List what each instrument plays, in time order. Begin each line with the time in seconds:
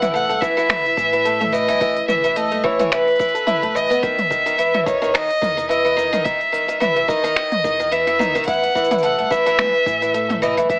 Already playing: sub bass A1
0.02 twelve-string acoustic guitar E3, mid tom, open hi-hat, cabasa
0.14 twelve-string acoustic guitar A3, violin F#5, cabasa
0.29 sub bass C#2, twelve-string acoustic guitar A3, open hi-hat
0.42 twelve-string acoustic guitar E3, violin E5, kick, cabasa
0.57 twelve-string acoustic guitar E3, cabasa
0.69 twelve-string acoustic guitar E3, finger snap, mid tom, open hi-hat, cabasa
0.86 open hi-hat
0.97 sub bass A2, twelve-string acoustic guitar E3, kick, cabasa
1.12 twelve-string acoustic guitar E3, open hi-hat
1.25 twelve-string acoustic guitar A3, open hi-hat, cabasa
1.41 twelve-string acoustic guitar A3, mid tom, open hi-hat
1.52 twelve-string acoustic guitar E3, violin D#5, cabasa
1.68 sub bass A1, twelve-string acoustic guitar E3, open hi-hat, cabasa
1.80 sub bass A1, twelve-string acoustic guitar E3, kick, open hi-hat, cabasa
1.97 open hi-hat
2.08 sub bass A1, twelve-string acoustic guitar E3, violin E5, mid tom, cabasa
2.24 twelve-string acoustic guitar E3, open hi-hat, cabasa
2.36 twelve-string acoustic guitar A3, violin D#5, open hi-hat, cabasa
2.51 sub bass C#2, twelve-string acoustic guitar A3, open hi-hat
2.64 twelve-string acoustic guitar E3, violin C#5, kick
2.79 twelve-string acoustic guitar E3, mid tom, open hi-hat, cabasa
2.91 twelve-string acoustic guitar E3, violin B4, finger snap, open hi-hat, cabasa
3.08 open hi-hat
3.11 open hi-hat
3.16 twelve-string acoustic guitar E4, open hi-hat
3.19 kick, open hi-hat, cabasa
3.25 open hi-hat
3.29 open hi-hat
3.35 twelve-string acoustic guitar A4, open hi-hat, cabasa
3.47 twelve-string acoustic guitar E4, mid tom, open hi-hat, cabasa
3.62 twelve-string acoustic guitar A3, kick, open hi-hat
3.75 sub bass A1, twelve-string acoustic guitar E3, violin D#5, cabasa
3.90 twelve-string acoustic guitar B3, open hi-hat, cabasa
4.03 sub bass E1, twelve-string acoustic guitar D#3, violin E5, kick, open hi-hat, cabasa
4.19 mid tom, open hi-hat
4.30 sub bass E1, twelve-string acoustic guitar D#3, kick, cabasa
4.46 twelve-string acoustic guitar D#3, open hi-hat, cabasa
4.58 twelve-string acoustic guitar E3, open hi-hat, cabasa
4.74 sub bass G#1, twelve-string acoustic guitar E3, mid tom, open hi-hat
4.86 twelve-string acoustic guitar D#3, violin C#5, kick, cabasa
5.02 twelve-string acoustic guitar D#3, cabasa
5.14 twelve-string acoustic guitar D#3, violin D#5, finger snap, open hi-hat, cabasa
5.31 open hi-hat
5.41 sub bass E2, twelve-string acoustic guitar D#3, kick, mid tom, cabasa
5.57 twelve-string acoustic guitar D#3, open hi-hat, cabasa
5.69 twelve-string acoustic guitar E3, violin D#5, open hi-hat, cabasa
5.85 twelve-string acoustic guitar E3, open hi-hat
5.97 twelve-string acoustic guitar D#3, cabasa
6.13 sub bass E1, twelve-string acoustic guitar D#3, mid tom, open hi-hat, cabasa
6.24 sub bass E1, twelve-string acoustic guitar D#3, violin E5, kick, open hi-hat, cabasa
6.41 open hi-hat
6.52 sub bass E1, twelve-string acoustic guitar D#3, cabasa
6.68 twelve-string acoustic guitar D#3, open hi-hat, cabasa
6.80 twelve-string acoustic guitar E3, violin E5, mid tom, open hi-hat, cabasa
6.96 sub bass G#1, twelve-string acoustic guitar E3, open hi-hat
7.08 twelve-string acoustic guitar D#3, violin D#5, kick, cabasa
7.24 twelve-string acoustic guitar D#3, open hi-hat, cabasa
7.36 twelve-string acoustic guitar D#3, finger snap, open hi-hat, cabasa
7.52 mid tom, open hi-hat
7.64 sub bass E2, twelve-string acoustic guitar D#3, kick, cabasa
7.79 twelve-string acoustic guitar D#3, open hi-hat, cabasa
7.91 twelve-string acoustic guitar E3, violin E5, open hi-hat, cabasa
8.07 twelve-string acoustic guitar E3, open hi-hat
8.19 twelve-string acoustic guitar D#3, mid tom, cabasa
8.35 sub bass E1, twelve-string acoustic guitar D#3, open hi-hat, cabasa
8.44 twelve-string acoustic guitar E3, violin F#5, kick, open hi-hat
8.48 sub bass A1, open hi-hat, cabasa
8.53 open hi-hat
8.64 open hi-hat
8.75 sub bass A1, twelve-string acoustic guitar E3, kick, cabasa
8.84 cabasa
8.91 twelve-string acoustic guitar E3, mid tom, open hi-hat, cabasa
8.98 cabasa
9.03 twelve-string acoustic guitar A3, violin F#5, open hi-hat, cabasa
9.18 sub bass C#2, twelve-string acoustic guitar A3, open hi-hat
9.30 twelve-string acoustic guitar E3, violin E5, kick, cabasa
9.46 twelve-string acoustic guitar E3, open hi-hat, cabasa
9.58 twelve-string acoustic guitar E3, finger snap, mid tom, open hi-hat, cabasa
9.61 mid tom
9.64 mid tom
9.67 mid tom
9.72 mid tom, open hi-hat
9.86 sub bass A2, twelve-string acoustic guitar E3, kick, cabasa
10.02 twelve-string acoustic guitar E3, open hi-hat, cabasa
10.14 twelve-string acoustic guitar A3, open hi-hat, cabasa
10.29 twelve-string acoustic guitar A3, mid tom, open hi-hat
10.42 twelve-string acoustic guitar E3, violin D#5, cabasa
10.57 sub bass A1, twelve-string acoustic guitar E3, open hi-hat, cabasa
10.69 sub bass A1, twelve-string acoustic guitar E3, violin E5, kick, open hi-hat, cabasa